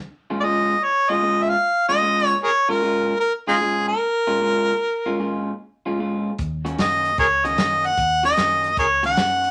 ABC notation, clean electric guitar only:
X:1
M:4/4
L:1/8
Q:"Swing" 1/4=151
K:Bbm
V:1 name="Clean electric guitar"
z [B,,A,DF] [B,,A,DF] z2 [B,,A,DF] [B,,A,DF] z | z [B,,A,DF] [B,,A,DF] z2 [B,,A,DF] [B,,A,DF] z | z [B,,A,DF] [B,,A,DF] z2 [B,,A,DF] [B,,A,DF] z | z [B,,A,DF] [B,,A,DF] z2 [B,,A,DF] [B,,A,DF] z |
z [E,B,DG] [E,B,DG] z2 [E,B,DG] [E,B,DG] z | z [E,B,DG] [E,B,DG] z2 [E,B,DG] [E,B,DG] z |]